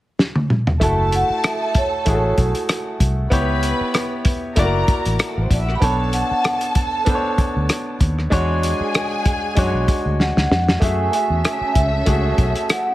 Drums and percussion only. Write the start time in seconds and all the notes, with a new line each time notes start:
0.19 snare
0.36 high tom
0.50 mid tom
0.67 floor tom
0.81 kick, closed hi-hat
1.12 closed hi-hat
1.44 cross-stick, closed hi-hat
1.75 kick, closed hi-hat
2.06 kick, closed hi-hat
2.38 kick, closed hi-hat
2.55 closed hi-hat
2.69 cross-stick, closed hi-hat
3.00 kick, closed hi-hat
3.31 kick, closed hi-hat
3.63 closed hi-hat
3.94 cross-stick, closed hi-hat
4.25 kick, closed hi-hat
4.56 kick, closed hi-hat
4.88 kick, closed hi-hat
5.06 closed hi-hat
5.19 cross-stick, closed hi-hat
5.51 kick, cross-stick, closed hi-hat
5.69 cross-stick
5.82 kick, closed hi-hat
6.13 closed hi-hat
6.44 cross-stick, closed hi-hat
6.61 closed hi-hat
6.75 kick, closed hi-hat
7.06 kick, closed hi-hat
7.38 kick, closed hi-hat
7.69 cross-stick, closed hi-hat
8.01 kick, cross-stick, closed hi-hat
8.19 cross-stick
8.32 kick, closed hi-hat
8.63 closed hi-hat
8.95 cross-stick, closed hi-hat
9.26 kick, closed hi-hat
9.57 kick, closed hi-hat
9.88 kick, closed hi-hat
10.20 snare
10.37 snare
10.52 snare
10.69 snare
10.82 kick, closed hi-hat
11.13 closed hi-hat
11.45 cross-stick, closed hi-hat
11.75 kick, closed hi-hat
12.06 kick, closed hi-hat
12.38 kick, closed hi-hat
12.56 closed hi-hat
12.70 cross-stick, closed hi-hat